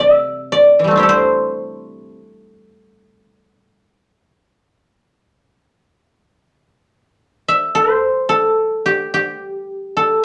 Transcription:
0.00 2.16 C3 medium
0.00 0.61 A4 medium
0.00 0.91 C5 medium
0.00 0.52 D5 medium
0.00 1.70 E5 medium
0.52 2.37 D5 medium
0.79 1.02 E3 soft
0.84 1.09 G3 soft
0.84 4.20 A3 soft
0.91 3.91 C4 soft
0.96 3.75 D4 soft
0.96 3.58 E4 soft
0.96 3.35 G4 soft
1.03 3.22 A4 soft
1.09 4.52 C5 medium
7.48 9.20 E5 medium
7.75 9.73 C5 medium
8.29 9.96 A4 medium
8.86 9.13 G4 medium
9.14 10.25 G4 medium
9.97 10.25 A4 medium

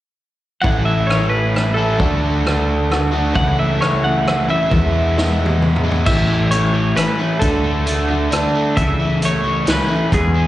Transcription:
0.62 1.97 A1 medium
0.62 1.09 A2 medium
0.62 1.08 E3 medium
0.62 1.09 A3 medium
0.62 1.09 C#4 medium
0.62 1.10 E4 medium
0.62 0.85 F#5 medium
0.62 kick medium
0.85 1.09 E5 medium
1.07 1.53 E3 soft
1.07 1.54 A3 soft
1.07 1.54 C#4 soft
1.07 1.29 C#5 medium
1.07 cross-stick medium
1.11 1.55 E4 medium
1.30 1.74 B4 medium
1.54 1.98 E3 soft
1.54 1.99 A3 medium
1.54 2.00 C#4 soft
1.54 2.00 E4 medium
1.54 cross-stick medium
1.74 1.99 A3 medium
1.74 1.98 C#4 medium
1.74 1.98 E4 medium
1.74 3.07 A4 medium
1.79 1.99 A2 soft
1.79 1.98 E3 medium
1.99 3.33 D2 medium
1.99 2.42 D3 medium
1.99 2.44 A3 medium
1.99 2.44 D4 medium
1.99 2.44 F#4 medium
1.99 kick medium
2.43 2.88 D3 medium
2.43 2.89 A3 medium
2.43 2.90 D4 medium
2.43 2.90 F#4 medium
2.43 cross-stick medium
2.89 3.12 D3 medium
2.89 3.13 A3 medium
2.89 3.12 D4 medium
2.89 3.11 F#4 medium
2.89 cross-stick medium
3.12 3.33 D3 medium
3.12 3.34 A3 soft
3.12 3.35 D4 soft
3.12 3.35 F#4 soft
3.34 4.68 C#2 medium
3.34 3.80 C#3 medium
3.34 3.80 E3 medium
3.34 3.80 A3 medium
3.34 3.80 C#4 medium
3.34 3.82 E4 medium
3.34 3.59 F#5 medium
3.34 kick medium
3.59 3.82 E5 medium
3.80 4.03 E3 soft
3.80 4.03 A3 medium
3.80 4.04 C#4 medium
3.80 4.02 E4 medium
3.80 4.04 C#5 medium
3.80 cross-stick medium
4.03 4.25 A3 soft
4.03 4.26 C#4 soft
4.03 4.26 E4 soft
4.03 4.50 F#5 medium
4.25 4.48 E3 medium
4.25 4.49 A3 medium
4.25 4.48 C#4 medium
4.25 4.47 E4 medium
4.25 cross-stick medium
4.48 4.70 C#3 medium
4.48 4.70 E3 medium
4.48 4.72 A3 soft
4.48 4.71 C#4 soft
4.48 4.71 E4 soft
4.48 5.81 E5 medium
4.71 5.16 E2 medium
4.71 6.04 E2 medium
4.71 5.16 B2 medium
4.71 5.15 E3 medium
4.71 5.16 G#3 medium
4.71 5.17 B3 medium
4.71 5.17 E4 medium
4.71 kick medium
5.16 5.61 E3 medium
5.16 5.62 G#3 medium
5.16 5.62 B3 medium
5.16 5.62 E4 medium
5.16 snare soft
5.46 high tom medium
5.62 6.06 E3 medium
5.62 6.07 G#3 medium
5.62 6.07 B3 medium
5.62 6.07 E4 medium
5.62 mid tom medium
5.76 mid tom medium
5.83 6.06 E2 medium
5.83 6.06 B2 medium
5.83 6.05 E3 medium
5.83 6.05 G#3 medium
5.83 6.05 B3 medium
5.83 6.05 E4 medium
5.91 floor tom medium
6.06 6.93 A1 medium
6.06 6.52 A2 medium
6.06 6.51 E3 medium
6.06 6.53 A3 medium
6.06 6.52 C#4 medium
6.06 6.53 E4 medium
6.06 6.51 E5 medium
6.06 kick medium
6.06 crash medium
6.29 6.72 E3 medium
6.51 6.95 E3 medium
6.51 6.96 A3 medium
6.51 6.97 C#4 medium
6.51 6.97 E4 medium
6.51 6.98 C#5 medium
6.51 closed hi-hat medium
6.73 7.40 E3 medium
6.96 7.19 E3 medium
6.96 7.19 A3 soft
6.96 7.20 C#4 medium
6.96 7.18 E4 medium
6.96 7.39 B4 medium
6.96 cross-stick medium
6.96 closed hi-hat soft
7.20 7.41 A3 soft
7.20 7.42 C#4 soft
7.20 7.42 E4 soft
7.39 8.28 D2 medium
7.39 7.85 D3 medium
7.39 7.87 A3 medium
7.39 7.87 D4 medium
7.39 7.88 F#4 medium
7.39 8.27 A4 medium
7.39 kick medium
7.39 closed hi-hat medium
7.63 8.07 D3 medium
7.87 8.09 D3 medium
7.87 8.10 A3 soft
7.87 8.09 D4 medium
7.87 8.08 F#4 medium
7.87 closed hi-hat medium
8.08 8.77 D3 medium
8.08 8.31 A3 soft
8.08 8.32 D4 soft
8.08 8.32 F#4 soft
8.32 8.76 D3 medium
8.32 8.76 A3 medium
8.32 8.77 D4 medium
8.32 8.77 F#4 medium
8.32 cross-stick medium
8.32 closed hi-hat medium
8.55 8.77 A3 medium
8.76 9.64 C#2 medium
8.76 9.22 C#3 medium
8.76 9.22 E3 medium
8.76 9.21 A3 medium
8.76 9.22 C#4 medium
8.76 9.23 E4 medium
8.76 9.19 E5 medium
8.76 kick medium
8.76 closed hi-hat medium
9.00 9.43 E3 medium
9.22 9.66 E3 soft
9.22 9.66 A3 medium
9.22 9.66 C#4 medium
9.22 9.68 E4 medium
9.22 9.70 C#5 medium
9.22 closed hi-hat medium
9.43 10.34 E3 medium
9.67 9.90 E3 medium
9.67 9.89 A3 medium
9.67 9.88 C#4 medium
9.67 9.87 E4 medium
9.67 10.14 B4 medium
9.67 snare medium
9.67 closed hi-hat medium
9.88 10.12 A3 soft
9.88 10.12 C#4 soft
9.88 10.12 E4 soft
10.12 10.47 E2 medium
10.12 10.47 B2 medium
10.12 10.47 E3 medium
10.12 10.47 G#3 medium
10.12 10.47 B3 medium
10.12 10.47 E4 medium
10.12 10.47 G#4 medium
10.12 kick medium
10.12 closed hi-hat medium
10.35 10.47 E3 medium

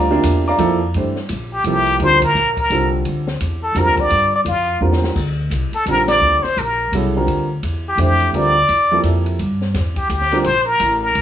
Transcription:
0.00 0.22 D2 medium
0.00 0.44 D5 medium
0.00 0.44 F5 medium
0.00 0.45 A#5 medium
0.00 0.44 D6 medium
0.10 0.56 C3 medium
0.10 0.56 A#3 medium
0.10 0.56 D4 medium
0.10 0.56 F4 medium
0.23 0.58 E2 medium
0.23 hi-hat pedal medium
0.23 ride medium
0.48 0.86 D5 medium
0.48 0.86 F5 medium
0.48 0.86 A#5 medium
0.48 0.86 D6 loud
0.58 0.93 F2 loud
0.58 0.79 F3 medium
0.58 0.78 A#3 medium
0.58 0.79 E4 medium
0.58 0.79 A4 medium
0.58 ride medium
0.94 1.28 G2 medium
0.94 1.15 E3 medium
0.94 1.15 A3 soft
0.94 1.15 D4 soft
0.94 1.15 G4 soft
0.94 1.15 C5 medium
0.94 ride soft
1.16 snare soft
1.29 1.63 A#1 medium
1.29 hi-hat pedal medium
1.29 ride medium
1.53 1.64 G4 medium
1.64 1.98 C2 medium
1.64 2.18 C3 medium
1.64 2.18 F3 medium
1.64 2.18 A#3 medium
1.64 2.18 E4 soft
1.64 2.05 G4 medium
1.64 2.18 A4 medium
1.64 hi-hat pedal medium
1.64 ride medium
1.87 ride soft
2.00 2.34 D2 medium
2.00 2.20 D3 medium
2.00 2.20 G3 soft
2.00 2.21 C4 soft
2.00 2.21 F4 soft
2.00 2.20 A#4 medium
2.00 2.23 C5 loud
2.00 ride medium
2.22 2.55 A#4 medium
2.22 kick medium
2.22 ride medium
2.35 2.69 A#1 medium
2.35 hi-hat pedal medium
2.57 2.91 A#4 medium
2.57 kick medium
2.57 ride soft
2.70 3.04 C2 medium
2.70 3.23 D3 medium
2.70 3.23 G3 medium
2.70 3.23 C4 medium
2.70 3.24 F4 medium
2.70 3.24 A4 medium
2.70 ride medium
3.05 3.40 D2 medium
3.05 ride medium
3.27 snare medium
3.41 3.74 E2 medium
3.41 hi-hat pedal soft
3.41 ride medium
3.63 3.79 A4 medium
3.75 3.87 F2 medium
3.75 4.29 D3 medium
3.75 4.29 G3 medium
3.75 4.29 C4 medium
3.75 4.29 F4 medium
3.75 4.28 A#4 medium
3.75 4.01 A#4 medium
3.75 hi-hat pedal medium
3.75 ride medium
3.87 3.98 D2 medium
3.97 4.09 A#1 medium
3.97 4.34 D5 medium
3.97 kick medium
3.97 ride soft
4.10 4.44 G2 medium
4.10 ride soft
4.36 4.41 D5 medium
4.45 4.80 F2 medium
4.45 4.80 F4 medium
4.45 hi-hat pedal medium
4.45 ride medium
4.81 5.15 E2 medium
4.81 5.16 D3 medium
4.81 5.16 G3 medium
4.81 5.17 C4 medium
4.81 5.17 F4 medium
4.81 5.17 A#4 medium
4.93 snare medium
5.04 snare medium
5.16 5.50 D2 medium
5.16 kick medium
5.16 crash medium
5.50 5.71 C2 medium
5.50 hi-hat pedal medium
5.50 ride medium
5.72 5.86 A4 medium
5.72 muted upright bass stroke soft
5.72 ride soft
5.86 6.20 A#1 medium
5.86 6.40 D3 medium
5.86 6.40 G3 medium
5.86 6.40 C4 medium
5.86 6.41 F4 medium
5.86 6.07 A#4 medium
5.86 6.41 A#4 medium
5.86 hi-hat pedal medium
5.86 ride medium
6.08 6.44 D5 medium
6.08 snare medium
6.08 ride medium
6.21 6.42 D2 medium
6.43 6.60 C5 medium
6.43 muted upright bass stroke soft
6.43 snare soft
6.57 6.91 A#1 medium
6.57 6.93 A#4 medium
6.57 hi-hat pedal medium
6.57 ride medium
6.92 7.26 C2 medium
6.92 7.13 C#3 medium
6.92 7.13 F#3 medium
6.92 7.14 B3 medium
6.92 7.14 E4 medium
6.92 7.14 A4 medium
6.92 hi-hat pedal medium
6.92 ride medium
7.16 7.46 D3 medium
7.16 7.46 G3 medium
7.16 7.46 C4 medium
7.16 7.47 F4 medium
7.16 7.47 A#4 medium
7.27 7.62 D2 medium
7.27 ride medium
7.63 7.97 E2 medium
7.63 hi-hat pedal soft
7.63 ride medium
7.88 7.99 G4 medium
7.98 8.32 F2 medium
7.98 8.51 E3 medium
7.98 8.51 A3 medium
7.98 8.51 D4 medium
7.98 8.52 G4 medium
7.98 8.52 C5 medium
7.98 hi-hat pedal medium
7.98 ride medium
8.02 8.37 G4 medium
8.20 ride soft
8.33 8.68 D2 medium
8.33 8.54 D3 medium
8.33 8.54 G3 medium
8.33 8.54 C4 medium
8.33 8.54 F4 medium
8.33 8.54 A#4 medium
8.33 9.05 D5 medium
8.33 ride medium
8.69 9.03 E2 medium
8.69 ride medium
8.91 9.37 C3 medium
8.91 9.37 F3 medium
8.91 9.37 A#3 medium
8.91 9.37 E4 medium
8.91 9.37 A4 medium
9.03 9.38 F2 medium
9.03 hi-hat pedal soft
9.03 ride medium
9.26 ride soft
9.39 9.74 G2 medium
9.39 ride medium
9.61 snare soft
9.74 10.08 E2 medium
9.74 snare soft
9.74 hi-hat pedal medium
9.74 ride medium
9.96 10.09 G4 medium
9.96 kick medium
9.96 ride soft
10.09 10.44 D2 medium
10.09 10.46 G4 medium
10.09 hi-hat pedal soft
10.09 ride medium
10.21 snare soft
10.31 10.44 D3 medium
10.31 10.44 G3 medium
10.31 10.44 C4 medium
10.31 10.44 F4 medium
10.31 10.44 A#4 medium
10.31 snare soft
10.31 ride soft
10.44 10.79 A#1 medium
10.44 10.67 C5 loud
10.44 ride medium
10.65 11.01 A#4 loud
10.80 11.14 A1 medium
10.80 hi-hat pedal medium
10.80 ride medium
11.02 11.22 A#4 medium
11.15 11.22 C2 medium
11.15 ride medium

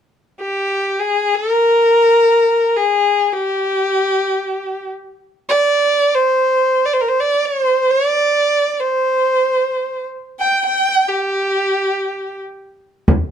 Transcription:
0.41 1.01 G4 medium
1.00 1.36 G#4 medium
1.35 2.78 A#4 medium
2.76 3.34 G#4 medium
3.33 4.88 G4 medium
5.49 6.17 D5 medium
6.15 6.87 C5 medium
6.86 6.95 D5 medium
6.93 7.02 C5 medium
7.01 7.10 A#4 medium
7.09 7.22 C5 medium
7.20 7.47 D5 medium
7.46 7.92 C5 medium
7.91 8.82 D5 medium
8.80 10.05 C5 medium
10.40 10.63 G5 medium
10.66 11.11 G5 medium
11.09 12.40 G4 medium
13.08 frame drum medium

